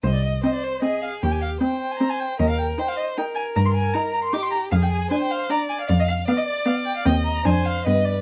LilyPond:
<<
  \new Staff \with { instrumentName = "Violin" } { \time 3/4 \key c \minor \tempo 4 = 154 c''16 d''16 ees''8 ees''16 d''16 c''8 ees''8 f''8 | g''16 aes''16 f''8 g''8 g''16 aes''16 bes''16 aes''16 g''8 | ees''16 f''16 g''8 g''16 f''16 ees''8 g''8 aes''8 | bes''16 c'''16 aes''8 bes''8 bes''16 c'''16 d'''16 c'''16 bes''8 |
f''16 g''16 aes''8 aes''16 g''16 f''8 bes''8 aes''16 f''16 | d''16 ees''16 f''8 f''16 ees''16 d''8 f''8 g''16 f''16 | g''8 bes''8 aes''8 f''8 ees''8 d''8 | }
  \new Staff \with { instrumentName = "Violin" } { \time 3/4 \key c \minor ees''4 c''4 aes'4 | g'4 c''2 | bes'4 c''4 bes'4~ | bes'2 g'4 |
aes'4 c''4 d''4 | f''4 d''2 | ees''4 c''4 b'4 | }
  \new Staff \with { instrumentName = "Viola" } { \time 3/4 \key c \minor r4 c'4 c'4 | r4 c'4 c'4 | r4 ees'4 ees'4 | r4 ees'4 ees'4 |
r4 d'4 d'4 | r4 b4 b4 | c'4 d'4 b4 | }
  \new Staff \with { instrumentName = "Cello" } { \clef bass \time 3/4 \key c \minor c,4 r2 | ees,4 r2 | ees,4 r2 | g,4 r2 |
f,4 r2 | f,4 r2 | ees,4 f,4 g,4 | }
>>